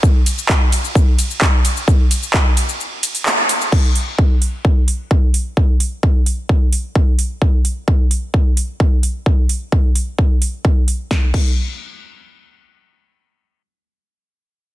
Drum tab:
CC |----------------|----------------|x---------------|----------------|
RD |--x---x---x---x-|--x---x---x---x-|----------------|----------------|
HH |--o---o---o---o-|--o---o---oo--o-|--o---o---o---o-|--o---o---o---o-|
SH |x-xxx-xxx-xxx-xx|x-xxx-xxx-xxx-xx|----------------|----------------|
CP |----x-------x---|----x-------x---|----------------|----------------|
SD |----------------|----------------|----------------|----------------|
BD |o---o---o---o---|o---o-----------|o---o---o---o---|o---o---o---o---|

CC |----------------|----------------|--x-------------|----------------|
RD |----------------|----------------|----------------|----------------|
HH |--o---o---o---o-|--o---o---o---o-|----------------|----------------|
SH |----------------|----------------|----------------|----------------|
CP |----------------|----------------|----------------|----------------|
SD |----------------|----------------|o---------------|----------------|
BD |o---o---o---o---|o---o---o---o---|o-o-------------|----------------|